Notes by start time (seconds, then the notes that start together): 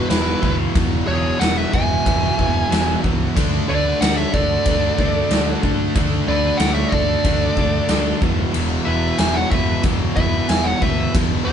Already playing: E3
0.10 E1 E2 B2 E3 E4 B4, snare, crash
0.41 D2 E2 B2 E3, kick
0.74 E1 E2 B2 E3, kick, crash
1.07 E1 E2 B2 E3 G#4 C#5
1.39 E1 E2 B2 E3 B4 F#5, snare, crash
1.57 B4 E5
1.73 E1 E2 B2 E3 E5 G#5, kick
2.06 E1 E2 B2 E3, kick, crash
2.38 E1 E2 B2 E3, kick
2.70 E1 E2 B2 E3, snare, crash
3.03 C#2 E2 B2 E3, kick
3.36 D2 D3 A3 D4, kick, crash
3.68 D2 D3 A3 D4 B4 D5
4.00 D2 D3 A3 D4 D5 F#5, snare, crash
4.17 C#5 E5
4.33 D2 D3 A3 D4 A4 D5, kick
4.65 D2 D3 A3 D4, kick, crash
4.98 D2 D3 A3 D4, kick
5.30 D2 D3 A3 D4, snare, crash
5.63 B1 D3 A3 D4, kick
5.95 D2 D3 A3 D4, kick, crash
6.27 D2 D3 A3 D4 B4 D5
6.57 D2 D3 A3 D5 F#5, snare, crash
6.62 D4
6.74 C#5 E5
6.89 D2 D3 D5, kick
6.93 A3 D4 A4
7.24 D2 D3 A3 D4, kick, crash
7.57 D2 D3 A3 D4, kick
7.89 D2 D3 A3 D4, snare, crash
8.22 E1 E2 B2 E3, kick
8.54 E1 E2 B2 E3, crash
8.85 E1 E2 B2 E3 B4 E5
9.18 E1 E2 B2 E3 E5 G#5, snare, crash
9.34 C#5 F#5
9.51 E1 E2 B2 E3 B4 E5, kick
9.83 E1 E2 B2 E3, kick, crash
10.16 E1 E2 B2 E3 B4 E5, kick
10.48 E1 E2 B2 E3 E5 G#5, snare, crash
10.64 C#5 F#5
10.81 D2 E2 B2 E3 B4 E5, kick
11.14 E1 E2 B2 E3, kick, crash
11.45 E1 E2 B2 E3 G#4 C#5